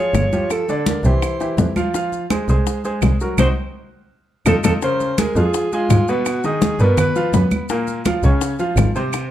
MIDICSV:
0, 0, Header, 1, 5, 480
1, 0, Start_track
1, 0, Tempo, 359281
1, 681, Time_signature, 4, 2, 24, 8
1, 12437, End_track
2, 0, Start_track
2, 0, Title_t, "Alto saxophone"
2, 0, Program_c, 0, 65
2, 0, Note_on_c, 0, 73, 102
2, 681, Note_off_c, 0, 73, 0
2, 689, Note_on_c, 0, 69, 79
2, 1132, Note_off_c, 0, 69, 0
2, 1171, Note_on_c, 0, 70, 68
2, 1390, Note_off_c, 0, 70, 0
2, 1402, Note_on_c, 0, 72, 73
2, 2310, Note_off_c, 0, 72, 0
2, 4536, Note_on_c, 0, 72, 84
2, 4648, Note_off_c, 0, 72, 0
2, 5978, Note_on_c, 0, 69, 77
2, 6090, Note_off_c, 0, 69, 0
2, 6216, Note_on_c, 0, 69, 80
2, 6328, Note_off_c, 0, 69, 0
2, 6461, Note_on_c, 0, 72, 96
2, 6936, Note_on_c, 0, 70, 84
2, 6956, Note_off_c, 0, 72, 0
2, 7183, Note_on_c, 0, 68, 91
2, 7203, Note_off_c, 0, 70, 0
2, 7662, Note_on_c, 0, 65, 85
2, 7682, Note_off_c, 0, 68, 0
2, 8141, Note_on_c, 0, 66, 82
2, 8161, Note_off_c, 0, 65, 0
2, 8629, Note_on_c, 0, 68, 91
2, 8649, Note_off_c, 0, 66, 0
2, 9109, Note_on_c, 0, 70, 87
2, 9129, Note_off_c, 0, 68, 0
2, 9336, Note_off_c, 0, 70, 0
2, 9351, Note_on_c, 0, 71, 88
2, 9784, Note_off_c, 0, 71, 0
2, 12437, End_track
3, 0, Start_track
3, 0, Title_t, "Upright piano"
3, 0, Program_c, 1, 0
3, 0, Note_on_c, 1, 53, 64
3, 0, Note_on_c, 1, 65, 63
3, 0, Note_on_c, 1, 68, 67
3, 352, Note_off_c, 1, 53, 0
3, 355, Note_off_c, 1, 65, 0
3, 356, Note_off_c, 1, 68, 0
3, 436, Note_on_c, 1, 53, 63
3, 440, Note_on_c, 1, 65, 61
3, 446, Note_on_c, 1, 67, 58
3, 832, Note_off_c, 1, 53, 0
3, 835, Note_off_c, 1, 65, 0
3, 838, Note_off_c, 1, 67, 0
3, 925, Note_on_c, 1, 50, 70
3, 931, Note_on_c, 1, 62, 69
3, 933, Note_on_c, 1, 74, 68
3, 1318, Note_off_c, 1, 50, 0
3, 1321, Note_off_c, 1, 62, 0
3, 1323, Note_off_c, 1, 74, 0
3, 1401, Note_on_c, 1, 52, 65
3, 1406, Note_on_c, 1, 64, 62
3, 1413, Note_on_c, 1, 67, 61
3, 1796, Note_off_c, 1, 52, 0
3, 1799, Note_off_c, 1, 64, 0
3, 1803, Note_off_c, 1, 67, 0
3, 1876, Note_on_c, 1, 52, 63
3, 1878, Note_on_c, 1, 64, 67
3, 1885, Note_on_c, 1, 67, 63
3, 2273, Note_off_c, 1, 52, 0
3, 2274, Note_off_c, 1, 64, 0
3, 2278, Note_off_c, 1, 67, 0
3, 2354, Note_on_c, 1, 53, 70
3, 2360, Note_on_c, 1, 65, 72
3, 2362, Note_on_c, 1, 77, 73
3, 2555, Note_off_c, 1, 53, 0
3, 2559, Note_off_c, 1, 65, 0
3, 2560, Note_off_c, 1, 77, 0
3, 2601, Note_on_c, 1, 53, 68
3, 2605, Note_on_c, 1, 65, 68
3, 2610, Note_on_c, 1, 77, 71
3, 2996, Note_off_c, 1, 53, 0
3, 2998, Note_off_c, 1, 65, 0
3, 3002, Note_off_c, 1, 77, 0
3, 3078, Note_on_c, 1, 56, 62
3, 3081, Note_on_c, 1, 68, 59
3, 3085, Note_on_c, 1, 72, 64
3, 3278, Note_off_c, 1, 56, 0
3, 3279, Note_off_c, 1, 68, 0
3, 3282, Note_off_c, 1, 72, 0
3, 3331, Note_on_c, 1, 56, 61
3, 3333, Note_on_c, 1, 68, 63
3, 3335, Note_on_c, 1, 72, 63
3, 3722, Note_off_c, 1, 56, 0
3, 3723, Note_off_c, 1, 68, 0
3, 3725, Note_off_c, 1, 72, 0
3, 3802, Note_on_c, 1, 56, 65
3, 3807, Note_on_c, 1, 68, 66
3, 3811, Note_on_c, 1, 72, 66
3, 4197, Note_off_c, 1, 56, 0
3, 4200, Note_off_c, 1, 68, 0
3, 4202, Note_off_c, 1, 72, 0
3, 4289, Note_on_c, 1, 54, 64
3, 4291, Note_on_c, 1, 66, 58
3, 4296, Note_on_c, 1, 70, 61
3, 4484, Note_off_c, 1, 54, 0
3, 4486, Note_off_c, 1, 66, 0
3, 4489, Note_off_c, 1, 70, 0
3, 4529, Note_on_c, 1, 60, 90
3, 4529, Note_on_c, 1, 66, 84
3, 4531, Note_on_c, 1, 63, 87
3, 4681, Note_off_c, 1, 60, 0
3, 4681, Note_off_c, 1, 66, 0
3, 4683, Note_off_c, 1, 63, 0
3, 5959, Note_on_c, 1, 63, 87
3, 5959, Note_on_c, 1, 65, 90
3, 5960, Note_on_c, 1, 69, 83
3, 6115, Note_off_c, 1, 63, 0
3, 6115, Note_off_c, 1, 65, 0
3, 6116, Note_off_c, 1, 69, 0
3, 6195, Note_on_c, 1, 69, 82
3, 6196, Note_on_c, 1, 63, 82
3, 6198, Note_on_c, 1, 65, 82
3, 6353, Note_off_c, 1, 63, 0
3, 6353, Note_off_c, 1, 69, 0
3, 6355, Note_off_c, 1, 65, 0
3, 6441, Note_on_c, 1, 49, 75
3, 6444, Note_on_c, 1, 61, 75
3, 6448, Note_on_c, 1, 70, 69
3, 6837, Note_off_c, 1, 49, 0
3, 6838, Note_off_c, 1, 61, 0
3, 6841, Note_off_c, 1, 70, 0
3, 6923, Note_on_c, 1, 56, 62
3, 6928, Note_on_c, 1, 68, 67
3, 6929, Note_on_c, 1, 80, 65
3, 7121, Note_off_c, 1, 56, 0
3, 7124, Note_off_c, 1, 68, 0
3, 7124, Note_off_c, 1, 80, 0
3, 7172, Note_on_c, 1, 53, 69
3, 7178, Note_on_c, 1, 65, 69
3, 7179, Note_on_c, 1, 77, 65
3, 7563, Note_off_c, 1, 53, 0
3, 7566, Note_off_c, 1, 65, 0
3, 7567, Note_off_c, 1, 77, 0
3, 7652, Note_on_c, 1, 56, 71
3, 7662, Note_on_c, 1, 68, 71
3, 7662, Note_on_c, 1, 80, 74
3, 8043, Note_off_c, 1, 56, 0
3, 8048, Note_off_c, 1, 68, 0
3, 8049, Note_off_c, 1, 80, 0
3, 8131, Note_on_c, 1, 47, 81
3, 8135, Note_on_c, 1, 59, 80
3, 8142, Note_on_c, 1, 71, 79
3, 8522, Note_off_c, 1, 47, 0
3, 8524, Note_off_c, 1, 59, 0
3, 8528, Note_off_c, 1, 71, 0
3, 8607, Note_on_c, 1, 51, 66
3, 8610, Note_on_c, 1, 63, 70
3, 8615, Note_on_c, 1, 75, 63
3, 8999, Note_off_c, 1, 51, 0
3, 9001, Note_off_c, 1, 63, 0
3, 9004, Note_off_c, 1, 75, 0
3, 9088, Note_on_c, 1, 47, 76
3, 9092, Note_on_c, 1, 59, 85
3, 9093, Note_on_c, 1, 71, 80
3, 9480, Note_off_c, 1, 47, 0
3, 9482, Note_off_c, 1, 59, 0
3, 9483, Note_off_c, 1, 71, 0
3, 9563, Note_on_c, 1, 53, 75
3, 9566, Note_on_c, 1, 65, 74
3, 9571, Note_on_c, 1, 77, 73
3, 9760, Note_off_c, 1, 53, 0
3, 9762, Note_off_c, 1, 65, 0
3, 9765, Note_off_c, 1, 77, 0
3, 9806, Note_on_c, 1, 59, 65
3, 9810, Note_on_c, 1, 71, 67
3, 9811, Note_on_c, 1, 83, 67
3, 10199, Note_off_c, 1, 59, 0
3, 10201, Note_off_c, 1, 71, 0
3, 10201, Note_off_c, 1, 83, 0
3, 10281, Note_on_c, 1, 46, 79
3, 10289, Note_on_c, 1, 70, 79
3, 10290, Note_on_c, 1, 58, 77
3, 10675, Note_off_c, 1, 46, 0
3, 10680, Note_off_c, 1, 70, 0
3, 10681, Note_off_c, 1, 58, 0
3, 10769, Note_on_c, 1, 53, 65
3, 10772, Note_on_c, 1, 65, 63
3, 10778, Note_on_c, 1, 77, 66
3, 10963, Note_off_c, 1, 53, 0
3, 10965, Note_off_c, 1, 65, 0
3, 10969, Note_off_c, 1, 77, 0
3, 11008, Note_on_c, 1, 49, 74
3, 11011, Note_on_c, 1, 61, 73
3, 11017, Note_on_c, 1, 73, 73
3, 11399, Note_off_c, 1, 49, 0
3, 11401, Note_off_c, 1, 61, 0
3, 11404, Note_off_c, 1, 73, 0
3, 11480, Note_on_c, 1, 53, 69
3, 11485, Note_on_c, 1, 65, 69
3, 11489, Note_on_c, 1, 77, 67
3, 11874, Note_off_c, 1, 53, 0
3, 11877, Note_off_c, 1, 65, 0
3, 11880, Note_off_c, 1, 77, 0
3, 11965, Note_on_c, 1, 48, 77
3, 11971, Note_on_c, 1, 60, 77
3, 11973, Note_on_c, 1, 72, 83
3, 12357, Note_off_c, 1, 48, 0
3, 12361, Note_off_c, 1, 60, 0
3, 12362, Note_off_c, 1, 72, 0
3, 12437, End_track
4, 0, Start_track
4, 0, Title_t, "Double bass"
4, 0, Program_c, 2, 43
4, 190, Note_on_c, 2, 31, 73
4, 297, Note_off_c, 2, 31, 0
4, 1389, Note_on_c, 2, 36, 88
4, 1496, Note_off_c, 2, 36, 0
4, 2110, Note_on_c, 2, 41, 76
4, 2217, Note_off_c, 2, 41, 0
4, 3320, Note_on_c, 2, 36, 82
4, 3427, Note_off_c, 2, 36, 0
4, 4039, Note_on_c, 2, 36, 77
4, 4146, Note_off_c, 2, 36, 0
4, 4519, Note_on_c, 2, 36, 83
4, 4597, Note_off_c, 2, 36, 0
4, 5964, Note_on_c, 2, 41, 83
4, 6041, Note_off_c, 2, 41, 0
4, 6202, Note_on_c, 2, 41, 85
4, 6279, Note_off_c, 2, 41, 0
4, 7159, Note_on_c, 2, 41, 85
4, 7266, Note_off_c, 2, 41, 0
4, 7879, Note_on_c, 2, 44, 82
4, 7986, Note_off_c, 2, 44, 0
4, 9076, Note_on_c, 2, 43, 83
4, 9183, Note_off_c, 2, 43, 0
4, 9797, Note_on_c, 2, 42, 85
4, 9904, Note_off_c, 2, 42, 0
4, 10996, Note_on_c, 2, 37, 93
4, 11103, Note_off_c, 2, 37, 0
4, 11714, Note_on_c, 2, 32, 90
4, 11821, Note_off_c, 2, 32, 0
4, 12437, End_track
5, 0, Start_track
5, 0, Title_t, "Drums"
5, 194, Note_on_c, 9, 60, 62
5, 194, Note_on_c, 9, 61, 72
5, 196, Note_on_c, 9, 63, 74
5, 196, Note_on_c, 9, 70, 62
5, 202, Note_on_c, 9, 75, 58
5, 328, Note_off_c, 9, 60, 0
5, 328, Note_off_c, 9, 61, 0
5, 329, Note_off_c, 9, 70, 0
5, 330, Note_off_c, 9, 63, 0
5, 335, Note_off_c, 9, 75, 0
5, 436, Note_on_c, 9, 70, 25
5, 437, Note_on_c, 9, 63, 58
5, 569, Note_off_c, 9, 70, 0
5, 571, Note_off_c, 9, 63, 0
5, 671, Note_on_c, 9, 70, 62
5, 673, Note_on_c, 9, 60, 61
5, 679, Note_on_c, 9, 63, 31
5, 681, Note_on_c, 9, 75, 59
5, 805, Note_off_c, 9, 70, 0
5, 807, Note_off_c, 9, 60, 0
5, 813, Note_off_c, 9, 63, 0
5, 814, Note_off_c, 9, 75, 0
5, 915, Note_on_c, 9, 60, 30
5, 918, Note_on_c, 9, 70, 26
5, 919, Note_on_c, 9, 63, 30
5, 1048, Note_off_c, 9, 60, 0
5, 1052, Note_off_c, 9, 70, 0
5, 1053, Note_off_c, 9, 63, 0
5, 1152, Note_on_c, 9, 60, 51
5, 1155, Note_on_c, 9, 63, 89
5, 1155, Note_on_c, 9, 70, 58
5, 1286, Note_off_c, 9, 60, 0
5, 1289, Note_off_c, 9, 63, 0
5, 1289, Note_off_c, 9, 70, 0
5, 1394, Note_on_c, 9, 63, 29
5, 1394, Note_on_c, 9, 70, 27
5, 1395, Note_on_c, 9, 60, 32
5, 1528, Note_off_c, 9, 63, 0
5, 1528, Note_off_c, 9, 70, 0
5, 1529, Note_off_c, 9, 60, 0
5, 1634, Note_on_c, 9, 75, 56
5, 1635, Note_on_c, 9, 63, 31
5, 1636, Note_on_c, 9, 60, 64
5, 1639, Note_on_c, 9, 70, 59
5, 1767, Note_off_c, 9, 75, 0
5, 1769, Note_off_c, 9, 63, 0
5, 1770, Note_off_c, 9, 60, 0
5, 1773, Note_off_c, 9, 70, 0
5, 1873, Note_on_c, 9, 63, 31
5, 1878, Note_on_c, 9, 60, 31
5, 1878, Note_on_c, 9, 70, 26
5, 2007, Note_off_c, 9, 63, 0
5, 2012, Note_off_c, 9, 60, 0
5, 2012, Note_off_c, 9, 70, 0
5, 2113, Note_on_c, 9, 63, 74
5, 2116, Note_on_c, 9, 60, 64
5, 2116, Note_on_c, 9, 61, 68
5, 2117, Note_on_c, 9, 70, 64
5, 2247, Note_off_c, 9, 63, 0
5, 2250, Note_off_c, 9, 60, 0
5, 2250, Note_off_c, 9, 61, 0
5, 2251, Note_off_c, 9, 70, 0
5, 2351, Note_on_c, 9, 63, 72
5, 2356, Note_on_c, 9, 75, 52
5, 2359, Note_on_c, 9, 70, 26
5, 2485, Note_off_c, 9, 63, 0
5, 2490, Note_off_c, 9, 75, 0
5, 2492, Note_off_c, 9, 70, 0
5, 2595, Note_on_c, 9, 60, 58
5, 2598, Note_on_c, 9, 70, 65
5, 2599, Note_on_c, 9, 63, 32
5, 2729, Note_off_c, 9, 60, 0
5, 2732, Note_off_c, 9, 63, 0
5, 2732, Note_off_c, 9, 70, 0
5, 2835, Note_on_c, 9, 63, 29
5, 2842, Note_on_c, 9, 70, 27
5, 2969, Note_off_c, 9, 63, 0
5, 2976, Note_off_c, 9, 70, 0
5, 3077, Note_on_c, 9, 60, 53
5, 3078, Note_on_c, 9, 63, 85
5, 3080, Note_on_c, 9, 75, 61
5, 3085, Note_on_c, 9, 70, 61
5, 3211, Note_off_c, 9, 60, 0
5, 3212, Note_off_c, 9, 63, 0
5, 3214, Note_off_c, 9, 75, 0
5, 3219, Note_off_c, 9, 70, 0
5, 3321, Note_on_c, 9, 63, 31
5, 3322, Note_on_c, 9, 70, 27
5, 3454, Note_off_c, 9, 63, 0
5, 3456, Note_off_c, 9, 70, 0
5, 3560, Note_on_c, 9, 63, 28
5, 3562, Note_on_c, 9, 70, 55
5, 3564, Note_on_c, 9, 60, 65
5, 3693, Note_off_c, 9, 63, 0
5, 3696, Note_off_c, 9, 70, 0
5, 3697, Note_off_c, 9, 60, 0
5, 3800, Note_on_c, 9, 63, 31
5, 3802, Note_on_c, 9, 70, 26
5, 3934, Note_off_c, 9, 63, 0
5, 3936, Note_off_c, 9, 70, 0
5, 4034, Note_on_c, 9, 75, 63
5, 4035, Note_on_c, 9, 70, 64
5, 4042, Note_on_c, 9, 60, 56
5, 4042, Note_on_c, 9, 61, 74
5, 4042, Note_on_c, 9, 63, 72
5, 4168, Note_off_c, 9, 70, 0
5, 4168, Note_off_c, 9, 75, 0
5, 4175, Note_off_c, 9, 60, 0
5, 4175, Note_off_c, 9, 61, 0
5, 4176, Note_off_c, 9, 63, 0
5, 4279, Note_on_c, 9, 70, 27
5, 4413, Note_off_c, 9, 70, 0
5, 4516, Note_on_c, 9, 70, 87
5, 4517, Note_on_c, 9, 75, 93
5, 4520, Note_on_c, 9, 63, 89
5, 4524, Note_on_c, 9, 61, 87
5, 4650, Note_off_c, 9, 70, 0
5, 4651, Note_off_c, 9, 75, 0
5, 4653, Note_off_c, 9, 63, 0
5, 4658, Note_off_c, 9, 61, 0
5, 5955, Note_on_c, 9, 75, 92
5, 5959, Note_on_c, 9, 70, 86
5, 5967, Note_on_c, 9, 61, 83
5, 5969, Note_on_c, 9, 63, 91
5, 6089, Note_off_c, 9, 75, 0
5, 6092, Note_off_c, 9, 70, 0
5, 6100, Note_off_c, 9, 61, 0
5, 6103, Note_off_c, 9, 63, 0
5, 6197, Note_on_c, 9, 70, 86
5, 6200, Note_on_c, 9, 75, 84
5, 6210, Note_on_c, 9, 61, 90
5, 6213, Note_on_c, 9, 63, 81
5, 6330, Note_off_c, 9, 70, 0
5, 6334, Note_off_c, 9, 75, 0
5, 6343, Note_off_c, 9, 61, 0
5, 6347, Note_off_c, 9, 63, 0
5, 6437, Note_on_c, 9, 70, 65
5, 6445, Note_on_c, 9, 60, 63
5, 6447, Note_on_c, 9, 63, 33
5, 6571, Note_off_c, 9, 70, 0
5, 6579, Note_off_c, 9, 60, 0
5, 6581, Note_off_c, 9, 63, 0
5, 6682, Note_on_c, 9, 70, 28
5, 6687, Note_on_c, 9, 63, 33
5, 6815, Note_off_c, 9, 70, 0
5, 6820, Note_off_c, 9, 63, 0
5, 6921, Note_on_c, 9, 75, 63
5, 6923, Note_on_c, 9, 63, 96
5, 6923, Note_on_c, 9, 70, 67
5, 6926, Note_on_c, 9, 60, 56
5, 7054, Note_off_c, 9, 75, 0
5, 7056, Note_off_c, 9, 70, 0
5, 7057, Note_off_c, 9, 63, 0
5, 7059, Note_off_c, 9, 60, 0
5, 7161, Note_on_c, 9, 70, 29
5, 7164, Note_on_c, 9, 63, 33
5, 7295, Note_off_c, 9, 70, 0
5, 7298, Note_off_c, 9, 63, 0
5, 7400, Note_on_c, 9, 70, 62
5, 7406, Note_on_c, 9, 60, 67
5, 7407, Note_on_c, 9, 63, 30
5, 7533, Note_off_c, 9, 70, 0
5, 7539, Note_off_c, 9, 60, 0
5, 7541, Note_off_c, 9, 63, 0
5, 7647, Note_on_c, 9, 70, 27
5, 7651, Note_on_c, 9, 63, 30
5, 7781, Note_off_c, 9, 70, 0
5, 7784, Note_off_c, 9, 63, 0
5, 7883, Note_on_c, 9, 70, 66
5, 7887, Note_on_c, 9, 75, 66
5, 7888, Note_on_c, 9, 60, 60
5, 7888, Note_on_c, 9, 61, 74
5, 7888, Note_on_c, 9, 63, 85
5, 8016, Note_off_c, 9, 70, 0
5, 8021, Note_off_c, 9, 60, 0
5, 8021, Note_off_c, 9, 61, 0
5, 8021, Note_off_c, 9, 63, 0
5, 8021, Note_off_c, 9, 75, 0
5, 8123, Note_on_c, 9, 70, 27
5, 8257, Note_off_c, 9, 70, 0
5, 8358, Note_on_c, 9, 70, 70
5, 8365, Note_on_c, 9, 60, 64
5, 8365, Note_on_c, 9, 75, 65
5, 8368, Note_on_c, 9, 63, 32
5, 8491, Note_off_c, 9, 70, 0
5, 8498, Note_off_c, 9, 60, 0
5, 8498, Note_off_c, 9, 75, 0
5, 8502, Note_off_c, 9, 63, 0
5, 8598, Note_on_c, 9, 70, 28
5, 8605, Note_on_c, 9, 60, 34
5, 8608, Note_on_c, 9, 63, 31
5, 8731, Note_off_c, 9, 70, 0
5, 8739, Note_off_c, 9, 60, 0
5, 8742, Note_off_c, 9, 63, 0
5, 8838, Note_on_c, 9, 60, 61
5, 8840, Note_on_c, 9, 70, 66
5, 8843, Note_on_c, 9, 63, 92
5, 8972, Note_off_c, 9, 60, 0
5, 8973, Note_off_c, 9, 70, 0
5, 8977, Note_off_c, 9, 63, 0
5, 9077, Note_on_c, 9, 70, 26
5, 9080, Note_on_c, 9, 60, 32
5, 9082, Note_on_c, 9, 63, 33
5, 9210, Note_off_c, 9, 70, 0
5, 9213, Note_off_c, 9, 60, 0
5, 9215, Note_off_c, 9, 63, 0
5, 9318, Note_on_c, 9, 63, 33
5, 9318, Note_on_c, 9, 64, 76
5, 9320, Note_on_c, 9, 70, 61
5, 9325, Note_on_c, 9, 60, 69
5, 9327, Note_on_c, 9, 75, 66
5, 9452, Note_off_c, 9, 63, 0
5, 9452, Note_off_c, 9, 64, 0
5, 9453, Note_off_c, 9, 70, 0
5, 9458, Note_off_c, 9, 60, 0
5, 9461, Note_off_c, 9, 75, 0
5, 9559, Note_on_c, 9, 70, 26
5, 9562, Note_on_c, 9, 63, 31
5, 9570, Note_on_c, 9, 60, 33
5, 9693, Note_off_c, 9, 70, 0
5, 9696, Note_off_c, 9, 63, 0
5, 9703, Note_off_c, 9, 60, 0
5, 9800, Note_on_c, 9, 70, 64
5, 9802, Note_on_c, 9, 63, 79
5, 9805, Note_on_c, 9, 60, 62
5, 9805, Note_on_c, 9, 61, 82
5, 9934, Note_off_c, 9, 70, 0
5, 9936, Note_off_c, 9, 63, 0
5, 9939, Note_off_c, 9, 60, 0
5, 9939, Note_off_c, 9, 61, 0
5, 10035, Note_on_c, 9, 70, 27
5, 10038, Note_on_c, 9, 63, 70
5, 10042, Note_on_c, 9, 75, 64
5, 10168, Note_off_c, 9, 70, 0
5, 10172, Note_off_c, 9, 63, 0
5, 10176, Note_off_c, 9, 75, 0
5, 10274, Note_on_c, 9, 70, 69
5, 10282, Note_on_c, 9, 63, 34
5, 10285, Note_on_c, 9, 60, 66
5, 10408, Note_off_c, 9, 70, 0
5, 10416, Note_off_c, 9, 63, 0
5, 10419, Note_off_c, 9, 60, 0
5, 10517, Note_on_c, 9, 70, 26
5, 10524, Note_on_c, 9, 63, 33
5, 10651, Note_off_c, 9, 70, 0
5, 10658, Note_off_c, 9, 63, 0
5, 10757, Note_on_c, 9, 70, 67
5, 10761, Note_on_c, 9, 75, 60
5, 10763, Note_on_c, 9, 63, 92
5, 10768, Note_on_c, 9, 60, 57
5, 10891, Note_off_c, 9, 70, 0
5, 10894, Note_off_c, 9, 75, 0
5, 10897, Note_off_c, 9, 63, 0
5, 10902, Note_off_c, 9, 60, 0
5, 10996, Note_on_c, 9, 70, 29
5, 11005, Note_on_c, 9, 63, 31
5, 11130, Note_off_c, 9, 70, 0
5, 11139, Note_off_c, 9, 63, 0
5, 11240, Note_on_c, 9, 60, 68
5, 11240, Note_on_c, 9, 70, 65
5, 11247, Note_on_c, 9, 63, 31
5, 11373, Note_off_c, 9, 60, 0
5, 11373, Note_off_c, 9, 70, 0
5, 11380, Note_off_c, 9, 63, 0
5, 11476, Note_on_c, 9, 70, 24
5, 11484, Note_on_c, 9, 63, 33
5, 11610, Note_off_c, 9, 70, 0
5, 11617, Note_off_c, 9, 63, 0
5, 11716, Note_on_c, 9, 70, 67
5, 11720, Note_on_c, 9, 75, 68
5, 11727, Note_on_c, 9, 60, 62
5, 11727, Note_on_c, 9, 61, 77
5, 11728, Note_on_c, 9, 63, 82
5, 11850, Note_off_c, 9, 70, 0
5, 11854, Note_off_c, 9, 75, 0
5, 11861, Note_off_c, 9, 60, 0
5, 11861, Note_off_c, 9, 61, 0
5, 11861, Note_off_c, 9, 63, 0
5, 11963, Note_on_c, 9, 70, 25
5, 12097, Note_off_c, 9, 70, 0
5, 12195, Note_on_c, 9, 70, 66
5, 12197, Note_on_c, 9, 75, 65
5, 12207, Note_on_c, 9, 60, 64
5, 12207, Note_on_c, 9, 63, 32
5, 12329, Note_off_c, 9, 70, 0
5, 12331, Note_off_c, 9, 75, 0
5, 12340, Note_off_c, 9, 63, 0
5, 12341, Note_off_c, 9, 60, 0
5, 12437, End_track
0, 0, End_of_file